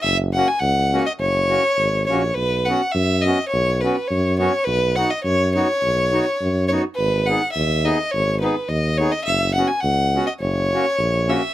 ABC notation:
X:1
M:2/4
L:1/16
Q:"Swing" 1/4=104
K:B
V:1 name="Fiddle"
e2 f g f3 d | c6 c2 | B2 f2 e2 d2 | c2 B2 c2 c2 |
B2 f d c2 c2- | c6 c2 | B2 f2 e2 d2 | c2 B2 d2 c d |
e2 f g f3 d | c6 e2 |]
V:2 name="Accordion"
z2 [A,CF]2 z2 [A,CF]2 | z2 [A,CF]2 z2 [A,CF]2 | z2 [B,CF]2 z2 [B,CF]2 | z2 [B,CF]2 z2 [B,CF]2 |
z2 [B,DF]2 z2 [B,DF]2 | z2 [B,DF]2 z2 [B,DF]2 | z2 [B,DG]2 z2 [B,DG]2 | z2 [B,DG]2 z2 [B,DG]2 |
z2 [B,CF]2 z2 [B,CF]2 | z2 [A,CF]2 z2 [A,CF]2 |]
V:3 name="Tuba" clef=bass
F,,,4 C,,4 | F,,,4 G,,,2 A,,,2 | B,,,4 F,,4 | B,,,4 F,,4 |
B,,,4 F,,4 | B,,,4 F,,4 | G,,,4 D,,4 | G,,,4 D,,4 |
F,,,4 C,,4 | F,,,4 A,,,4 |]